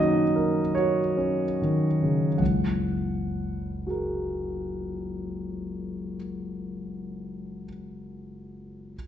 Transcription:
0, 0, Header, 1, 2, 480
1, 0, Start_track
1, 0, Key_signature, 6, "major"
1, 0, Tempo, 1522843
1, 240, Tempo, 1634877
1, 720, Time_signature, 3, 2, 24, 8
1, 720, Tempo, 1463415
1, 1680, Tempo, 1431981
1, 2937, End_track
2, 0, Start_track
2, 0, Title_t, "Grand piano"
2, 0, Program_c, 0, 0
2, 0, Control_c, 0, 64, 127
2, 0, Note_on_c, 0, 42, 32
2, 0, Note_on_c, 0, 49, 27
2, 0, Note_on_c, 0, 51, 29
2, 0, Note_on_c, 0, 58, 28
2, 0, Note_on_c, 0, 61, 29
2, 0, Note_on_c, 0, 63, 29
2, 0, Note_on_c, 0, 66, 28
2, 0, Note_on_c, 0, 75, 55
2, 66, Note_off_c, 0, 66, 0
2, 112, Note_on_c, 0, 70, 28
2, 186, Note_off_c, 0, 63, 0
2, 233, Note_off_c, 0, 75, 0
2, 235, Note_on_c, 0, 73, 46
2, 243, Note_on_c, 0, 66, 28
2, 308, Note_off_c, 0, 70, 0
2, 360, Note_off_c, 0, 61, 0
2, 360, Note_on_c, 0, 61, 24
2, 436, Note_off_c, 0, 66, 0
2, 485, Note_off_c, 0, 73, 0
2, 491, Note_off_c, 0, 51, 0
2, 491, Note_on_c, 0, 51, 21
2, 563, Note_off_c, 0, 61, 0
2, 610, Note_off_c, 0, 49, 0
2, 610, Note_on_c, 0, 49, 20
2, 680, Note_off_c, 0, 51, 0
2, 703, Note_off_c, 0, 42, 0
2, 715, Note_on_c, 0, 78, 30
2, 719, Note_off_c, 0, 49, 0
2, 719, Note_on_c, 0, 37, 23
2, 720, Note_on_c, 0, 30, 22
2, 727, Control_c, 0, 64, 0
2, 730, Note_off_c, 0, 58, 0
2, 794, Control_c, 0, 64, 127
2, 1202, Note_on_c, 0, 66, 19
2, 1207, Note_on_c, 0, 68, 20
2, 1215, Note_on_c, 0, 70, 20
2, 1956, Note_off_c, 0, 78, 0
2, 1959, Note_off_c, 0, 37, 0
2, 1960, Note_off_c, 0, 30, 0
2, 2454, Note_off_c, 0, 66, 0
2, 2458, Note_off_c, 0, 68, 0
2, 2466, Note_off_c, 0, 70, 0
2, 2896, Control_c, 0, 64, 0
2, 2937, End_track
0, 0, End_of_file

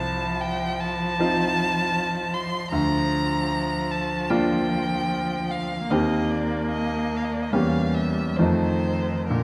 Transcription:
0, 0, Header, 1, 4, 480
1, 0, Start_track
1, 0, Key_signature, -2, "major"
1, 0, Tempo, 777202
1, 1685, Time_signature, 4, 2, 24, 8
1, 2169, Tempo, 800000
1, 4089, Tempo, 836820
1, 5049, Tempo, 921659
1, 5594, End_track
2, 0, Start_track
2, 0, Title_t, "Violin"
2, 0, Program_c, 0, 40
2, 0, Note_on_c, 0, 81, 62
2, 252, Note_on_c, 0, 79, 64
2, 261, Note_off_c, 0, 81, 0
2, 496, Note_on_c, 0, 81, 73
2, 506, Note_off_c, 0, 79, 0
2, 1444, Note_on_c, 0, 84, 61
2, 1453, Note_off_c, 0, 81, 0
2, 1683, Note_off_c, 0, 84, 0
2, 1686, Note_on_c, 0, 82, 68
2, 2407, Note_on_c, 0, 81, 56
2, 2416, Note_off_c, 0, 82, 0
2, 2639, Note_on_c, 0, 79, 64
2, 2648, Note_off_c, 0, 81, 0
2, 3366, Note_on_c, 0, 77, 53
2, 3375, Note_off_c, 0, 79, 0
2, 3606, Note_on_c, 0, 75, 54
2, 3615, Note_off_c, 0, 77, 0
2, 3846, Note_on_c, 0, 74, 51
2, 3855, Note_off_c, 0, 75, 0
2, 4084, Note_off_c, 0, 74, 0
2, 4087, Note_on_c, 0, 75, 51
2, 4350, Note_on_c, 0, 77, 40
2, 4358, Note_off_c, 0, 75, 0
2, 4394, Note_on_c, 0, 75, 42
2, 4403, Note_off_c, 0, 77, 0
2, 4446, Note_on_c, 0, 74, 40
2, 4454, Note_off_c, 0, 75, 0
2, 4497, Note_on_c, 0, 75, 39
2, 4505, Note_off_c, 0, 74, 0
2, 4557, Note_on_c, 0, 77, 49
2, 4565, Note_off_c, 0, 75, 0
2, 4793, Note_on_c, 0, 76, 48
2, 4802, Note_off_c, 0, 77, 0
2, 5035, Note_on_c, 0, 72, 47
2, 5044, Note_off_c, 0, 76, 0
2, 5517, Note_off_c, 0, 72, 0
2, 5520, Note_on_c, 0, 70, 43
2, 5594, Note_off_c, 0, 70, 0
2, 5594, End_track
3, 0, Start_track
3, 0, Title_t, "Grand piano"
3, 0, Program_c, 1, 0
3, 0, Control_c, 1, 64, 127
3, 0, Note_on_c, 1, 36, 48
3, 737, Note_on_c, 1, 60, 34
3, 739, Note_on_c, 1, 63, 34
3, 743, Note_on_c, 1, 65, 39
3, 1659, Note_off_c, 1, 36, 0
3, 1663, Note_off_c, 1, 60, 0
3, 1663, Note_off_c, 1, 63, 0
3, 1666, Note_off_c, 1, 65, 0
3, 1679, Note_on_c, 1, 38, 43
3, 1697, Control_c, 1, 64, 0
3, 1807, Control_c, 1, 64, 127
3, 2643, Note_on_c, 1, 58, 34
3, 2644, Note_on_c, 1, 62, 34
3, 2646, Note_on_c, 1, 65, 37
3, 3578, Note_off_c, 1, 38, 0
3, 3581, Note_off_c, 1, 58, 0
3, 3581, Note_off_c, 1, 62, 0
3, 3583, Note_off_c, 1, 65, 0
3, 3605, Note_on_c, 1, 39, 41
3, 3607, Note_on_c, 1, 58, 30
3, 3609, Note_on_c, 1, 60, 29
3, 3616, Control_c, 1, 64, 0
3, 3618, Note_on_c, 1, 67, 31
3, 3699, Control_c, 1, 64, 127
3, 4537, Note_off_c, 1, 39, 0
3, 4537, Note_off_c, 1, 58, 0
3, 4538, Note_off_c, 1, 60, 0
3, 4543, Note_off_c, 1, 67, 0
3, 4557, Note_on_c, 1, 40, 37
3, 4558, Note_on_c, 1, 58, 28
3, 4559, Note_on_c, 1, 61, 26
3, 4566, Note_on_c, 1, 67, 27
3, 4571, Control_c, 1, 64, 0
3, 4651, Control_c, 1, 64, 127
3, 5024, Note_off_c, 1, 58, 0
3, 5024, Note_off_c, 1, 61, 0
3, 5028, Note_off_c, 1, 67, 0
3, 5032, Note_off_c, 1, 40, 0
3, 5049, Note_on_c, 1, 41, 36
3, 5049, Note_on_c, 1, 57, 25
3, 5054, Note_on_c, 1, 63, 27
3, 5054, Note_on_c, 1, 65, 26
3, 5057, Control_c, 1, 64, 0
3, 5164, Control_c, 1, 64, 127
3, 5505, Note_off_c, 1, 57, 0
3, 5507, Note_off_c, 1, 63, 0
3, 5508, Note_off_c, 1, 65, 0
3, 5512, Note_off_c, 1, 41, 0
3, 5526, Note_on_c, 1, 46, 34
3, 5535, Control_c, 1, 64, 0
3, 5594, Note_off_c, 1, 46, 0
3, 5594, End_track
4, 0, Start_track
4, 0, Title_t, "Cello"
4, 0, Program_c, 2, 42
4, 0, Note_on_c, 2, 53, 43
4, 1664, Note_off_c, 2, 53, 0
4, 1699, Note_on_c, 2, 53, 45
4, 3587, Note_off_c, 2, 53, 0
4, 3594, Note_on_c, 2, 58, 42
4, 4555, Note_on_c, 2, 55, 33
4, 4564, Note_off_c, 2, 58, 0
4, 5052, Note_on_c, 2, 51, 32
4, 5060, Note_off_c, 2, 55, 0
4, 5514, Note_off_c, 2, 51, 0
4, 5517, Note_on_c, 2, 50, 31
4, 5594, Note_off_c, 2, 50, 0
4, 5594, End_track
0, 0, End_of_file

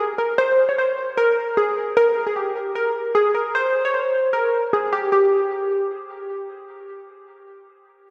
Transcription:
0, 0, Header, 1, 2, 480
1, 0, Start_track
1, 0, Tempo, 394737
1, 468, Time_signature, 4, 2, 24, 8
1, 9853, End_track
2, 0, Start_track
2, 0, Title_t, "Synth keys"
2, 0, Program_c, 0, 88
2, 0, Note_on_c, 0, 68, 74
2, 183, Note_off_c, 0, 68, 0
2, 223, Note_on_c, 0, 70, 77
2, 417, Note_off_c, 0, 70, 0
2, 465, Note_on_c, 0, 72, 94
2, 812, Note_off_c, 0, 72, 0
2, 836, Note_on_c, 0, 73, 73
2, 926, Note_off_c, 0, 73, 0
2, 953, Note_on_c, 0, 72, 78
2, 1402, Note_off_c, 0, 72, 0
2, 1428, Note_on_c, 0, 70, 93
2, 1879, Note_off_c, 0, 70, 0
2, 1911, Note_on_c, 0, 68, 84
2, 2103, Note_off_c, 0, 68, 0
2, 2393, Note_on_c, 0, 70, 105
2, 2736, Note_off_c, 0, 70, 0
2, 2754, Note_on_c, 0, 68, 78
2, 2845, Note_off_c, 0, 68, 0
2, 2870, Note_on_c, 0, 67, 70
2, 3320, Note_off_c, 0, 67, 0
2, 3349, Note_on_c, 0, 70, 84
2, 3800, Note_off_c, 0, 70, 0
2, 3828, Note_on_c, 0, 68, 89
2, 4021, Note_off_c, 0, 68, 0
2, 4068, Note_on_c, 0, 70, 78
2, 4261, Note_off_c, 0, 70, 0
2, 4315, Note_on_c, 0, 72, 98
2, 4657, Note_off_c, 0, 72, 0
2, 4680, Note_on_c, 0, 73, 83
2, 4769, Note_off_c, 0, 73, 0
2, 4792, Note_on_c, 0, 72, 71
2, 5241, Note_off_c, 0, 72, 0
2, 5267, Note_on_c, 0, 70, 80
2, 5719, Note_off_c, 0, 70, 0
2, 5754, Note_on_c, 0, 68, 86
2, 5944, Note_off_c, 0, 68, 0
2, 5990, Note_on_c, 0, 67, 85
2, 6182, Note_off_c, 0, 67, 0
2, 6228, Note_on_c, 0, 67, 83
2, 7620, Note_off_c, 0, 67, 0
2, 9853, End_track
0, 0, End_of_file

